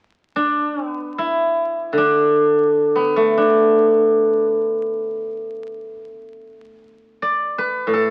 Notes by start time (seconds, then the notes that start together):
0.36 D4
0.87 B3
1.18 E4
1.93 D3
1.98 D4
2.96 B3
3.16 A3
3.38 D4
7.22 D5
7.58 B4
7.87 A2
7.94 A4